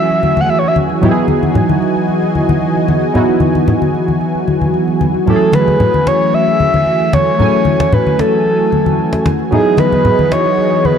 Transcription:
0.00 9.48 E3 medium
0.00 0.98 F#3 medium
0.00 0.98 A3 medium
0.00 0.99 C#4 medium
0.00 0.99 E4 medium
0.00 9.48 F#4 medium
0.00 1.00 G#4 medium
0.00 0.42 E5 loud
0.00 9.48 G#5 medium
0.00 downlifter medium
0.10 cajon slap soft
0.23 cajon slap soft
0.23 high conga medium
0.37 0.51 F#5 medium
0.37 cajon slap soft
0.37 high conga medium
0.49 0.60 E5 medium
0.49 cajon slap soft
0.59 0.69 C#5 medium
0.63 cajon slap soft
0.68 0.76 E5 medium
0.76 cajon slap soft
0.76 high conga medium
0.90 cajon slap soft
1.01 3.10 F#3 medium
1.01 3.11 B3 medium
1.01 3.11 D#4 medium
1.01 3.12 E4 medium
1.01 1.10 G4 medium
1.01 5.23 D#5 medium
1.01 cajon slap soft
1.01 low conga medium
1.11 3.15 G#4 medium
1.16 cajon slap soft
1.28 cajon slap soft
1.28 high conga medium
1.43 cajon slap soft
1.43 high conga medium
1.55 cajon slap soft
1.55 low conga medium
1.69 cajon slap soft
1.69 high conga medium
1.82 cajon slap medium
1.96 cajon slap soft
2.09 cajon slap soft
2.23 cajon slap soft
2.35 cajon slap soft
2.35 high conga medium
2.49 cajon slap soft
2.49 high conga medium
2.62 cajon slap soft
2.76 cajon slap soft
2.88 cajon slap soft
2.88 high conga medium
3.02 cajon slap soft
3.14 5.23 F#3 medium
3.14 5.23 B3 medium
3.14 5.24 D#4 medium
3.14 5.24 E4 medium
3.14 5.24 F#4 medium
3.14 cajon slap soft
3.14 low conga medium
3.29 cajon slap soft
3.40 cajon slap soft
3.40 high conga medium
3.55 cajon slap soft
3.55 high conga medium
3.68 cajon slap soft
3.68 low conga medium
3.82 cajon slap soft
3.82 high conga medium
3.94 cajon slap soft
4.08 cajon slap soft
4.08 high conga soft
4.21 cajon slap soft
4.35 cajon slap soft
4.47 cajon slap soft
4.47 high conga medium
4.61 cajon slap soft
4.61 high conga medium
4.74 cajon slap soft
4.88 cajon slap soft
5.01 cajon slap soft
5.01 high conga medium
5.14 cajon slap soft
5.26 7.35 F#3 medium
5.26 7.36 A3 medium
5.26 9.48 A3 medium
5.26 7.36 C#4 medium
5.26 7.36 E4 medium
5.26 5.35 G4 medium
5.26 5.56 A4 loud
5.26 cajon slap soft
5.26 low conga medium
5.36 7.40 G#4 medium
5.41 cajon slap soft
5.53 6.09 B4 loud
5.53 cajon slap medium
5.53 high conga medium
5.67 cajon slap soft
5.67 high conga medium
5.80 cajon slap soft
5.80 low conga medium
5.94 cajon slap soft
5.94 high conga medium
6.07 6.36 C#5 loud
6.07 cajon slap medium
6.21 cajon slap soft
6.33 7.15 E5 loud
6.33 cajon slap soft
6.47 cajon slap soft
6.60 cajon slap soft
6.60 high conga medium
6.74 high conga medium
6.86 cajon slap soft
7.00 cajon slap soft
7.13 7.95 C#5 loud
7.13 cajon slap medium
7.13 high conga medium
7.27 cajon slap soft
7.39 9.47 F#3 medium
7.39 9.48 A3 medium
7.39 9.48 C#4 medium
7.39 9.49 E4 medium
7.39 9.49 G#5 medium
7.39 cajon slap soft
7.39 low conga medium
7.53 cajon slap soft
7.65 cajon slap soft
7.65 high conga medium
7.80 cajon slap medium
7.80 high conga medium
7.92 8.21 B4 medium
7.92 cajon slap soft
7.92 low conga medium
8.06 cajon slap soft
8.06 high conga medium
8.19 9.26 A4 medium
8.19 cajon slap medium
8.33 cajon slap soft
8.46 cajon slap soft
8.60 cajon slap soft
8.72 cajon slap soft
8.72 high conga medium
8.86 cajon slap soft
8.86 high conga medium
8.99 cajon slap soft
9.13 cajon slap medium
9.26 cajon slap medium
9.26 high conga medium
9.39 cajon slap soft
9.51 10.98 E3 medium
9.51 10.98 F#3 medium
9.51 10.98 B3 medium
9.51 10.98 D#4 medium
9.51 10.98 E4 medium
9.51 10.98 F#4 medium
9.51 10.98 G#4 medium
9.51 9.81 G#4 loud
9.51 10.98 G#4 medium
9.51 10.98 D#5 medium
9.51 cajon slap soft
9.51 low conga medium
9.66 cajon slap soft
9.77 10.34 B4 loud
9.77 cajon slap medium
9.77 high conga medium
9.92 cajon slap soft
9.92 high conga medium
10.05 cajon slap soft
10.05 low conga medium
10.19 cajon slap soft
10.19 high conga medium
10.32 10.87 C#5 loud
10.32 cajon slap medium
10.45 cajon slap soft
10.58 cajon slap soft
10.72 cajon slap soft
10.85 10.98 B4 loud
10.85 cajon slap soft
10.85 high conga medium

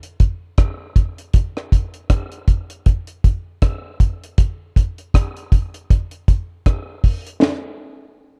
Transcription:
0.03 closed hi-hat medium
0.20 kick loud
0.20 closed hi-hat medium
0.58 kick loud
0.58 cross-stick loud
0.58 closed hi-hat medium
0.96 kick medium
0.96 closed hi-hat medium
1.18 closed hi-hat medium
1.34 kick loud
1.34 closed hi-hat medium
1.57 cross-stick medium
1.72 kick medium
1.72 closed hi-hat medium
1.94 closed hi-hat soft
2.10 kick loud
2.10 cross-stick loud
2.10 closed hi-hat medium
2.32 closed hi-hat soft
2.48 kick medium
2.48 closed hi-hat medium
2.70 closed hi-hat medium
2.86 kick loud
2.86 closed hi-hat medium
3.07 closed hi-hat medium
3.24 kick loud
3.24 closed hi-hat medium
3.62 kick loud
3.62 cross-stick loud
3.62 closed hi-hat medium
4.00 kick medium
4.00 closed hi-hat medium
4.24 closed hi-hat medium
4.38 kick loud
4.38 closed hi-hat loud
4.76 kick medium
4.76 closed hi-hat medium
4.98 closed hi-hat soft
5.14 kick loud
5.14 cross-stick loud
5.14 closed hi-hat medium
5.37 closed hi-hat soft
5.52 kick medium
5.52 closed hi-hat medium
5.74 closed hi-hat medium
5.90 kick loud
5.90 closed hi-hat medium
6.11 closed hi-hat medium
6.28 kick medium
6.28 closed hi-hat medium
6.66 kick loud
6.66 cross-stick loud
6.66 closed hi-hat medium
7.04 kick medium
7.04 open hi-hat medium
7.27 closed hi-hat medium
7.42 snare loud

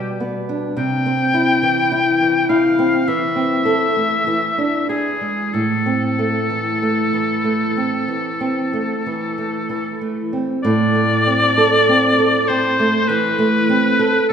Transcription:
0.00 0.73 B2 soft
0.00 0.38 G3 soft
0.00 0.20 G4 medium
0.20 0.66 B3 soft
0.49 0.78 D4 soft
0.77 3.03 C3 soft
0.77 2.46 G5 medium
1.06 1.51 C4 soft
1.34 1.80 E4 soft
1.62 2.09 E3 soft
1.92 2.38 E4 soft
2.21 2.67 E3 soft
2.49 2.96 E4 soft
2.49 3.10 F5 medium
2.79 3.08 C4 soft
3.08 4.23 E3 soft
3.08 4.88 E5 medium
3.36 3.84 C4 soft
3.65 4.14 A4 soft
3.97 4.27 A3 soft
4.27 5.50 E3 soft
4.58 5.08 D4 soft
4.89 5.55 G#4 soft
4.89 5.41 G#4 soft
5.21 5.54 G#3 soft
5.54 8.05 A2 soft
5.54 10.01 A4 soft
5.86 6.38 C4 soft
6.19 6.70 A3 soft
6.50 7.01 E3 soft
6.82 7.33 A3 soft
7.13 7.64 E3 soft
7.44 7.96 A3 soft
7.77 8.28 C4 soft
8.08 8.60 E3 soft
8.41 8.92 C4 soft
8.73 9.24 A3 soft
9.06 9.56 E3 soft
9.38 9.88 A3 soft
9.69 10.20 E3 soft
10.01 10.52 A3 soft
10.33 10.64 C4 soft
10.63 13.04 A2 medium
10.63 12.49 D5 loud
10.95 11.44 A3 soft
11.27 11.75 C4 soft
11.58 12.06 A4 soft
11.89 12.36 C4 medium
12.19 12.66 A4 soft
12.47 12.97 C4 soft
12.47 13.09 C5 medium
12.80 13.27 A3 soft
13.08 13.57 E3 medium
13.08 14.28 B4 medium
13.39 13.87 A3 medium
13.69 14.17 C4 soft
13.99 14.33 A4 medium
14.29 14.33 A4 medium

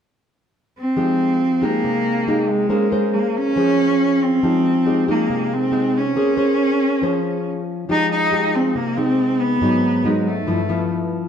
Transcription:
0.79 1.66 C4 medium
0.96 1.81 F3 medium
0.96 1.40 G#3 medium
0.96 1.40 D#4 soft
0.96 1.40 G4 medium
1.62 2.23 G#3 medium
1.62 2.50 A#3 medium
1.62 2.23 D#4 medium
1.62 2.24 G4 medium
1.84 2.68 C3 medium
2.28 2.69 G#3 medium
2.28 2.69 D#4 medium
2.28 2.69 G4 medium
2.48 3.15 G#3 medium
2.69 3.54 A#3 medium
2.69 2.88 C#4 medium
2.69 2.88 G#4 soft
2.69 2.88 C5 soft
2.92 3.53 C#4 soft
2.92 3.53 G#4 medium
2.92 3.53 C5 medium
3.14 3.38 A#3 medium
3.37 4.24 C#4 loud
3.56 4.40 F3 medium
3.56 4.39 C#4 soft
3.56 4.40 G#4 soft
3.56 4.40 C5 medium
4.22 5.08 C4 medium
4.43 5.27 F3 medium
4.43 4.71 G#3 medium
4.43 4.71 D#4 medium
4.43 4.71 G4 medium
4.86 5.04 G#3 medium
4.86 5.04 D#4 soft
4.86 5.04 G4 medium
5.07 5.69 G#3 medium
5.07 5.55 A#3 medium
5.07 5.69 D#4 soft
5.07 5.69 G4 medium
5.30 6.14 C3 medium
5.54 5.99 C4 medium
5.72 6.01 G#3 medium
5.72 6.01 D#4 medium
5.72 6.02 G4 medium
5.97 7.47 C#4 medium
6.16 7.00 A#3 medium
6.16 6.34 C#4 medium
6.16 6.34 G#4 medium
6.16 6.35 C5 medium
6.37 6.98 C#4 soft
6.37 6.98 G#4 medium
6.37 6.99 C5 medium
7.02 7.86 F3 medium
7.02 7.60 C#4 soft
7.02 7.60 G#4 soft
7.02 7.61 C5 medium
7.89 8.73 F3 medium
7.89 8.29 G#3 medium
7.89 8.29 D#4 medium
7.89 8.10 D#4 loud
7.89 8.29 G4 medium
8.12 8.57 D#4 loud
8.32 8.75 G#3 medium
8.32 8.75 D#4 medium
8.32 8.75 G4 medium
8.55 8.78 C4 medium
8.75 9.59 C3 medium
8.75 8.98 A#3 medium
8.97 9.58 G#3 medium
8.97 9.42 C4 medium
8.97 9.58 D#4 medium
8.97 9.59 G4 medium
9.40 10.08 B3 medium
9.62 10.46 G#2 medium
9.62 10.01 F#3 medium
9.62 10.01 B3 medium
9.62 10.02 D#4 medium
10.04 10.33 F#3 medium
10.04 10.30 G#3 medium
10.04 10.34 B3 medium
10.04 10.34 D#4 medium
10.29 10.92 A3 medium
10.47 11.28 G2 medium
10.47 10.60 F3 medium
10.47 10.60 B3 medium
10.47 10.61 E4 medium
10.69 11.28 F3 medium
10.69 11.28 B3 medium
10.69 11.28 E4 medium

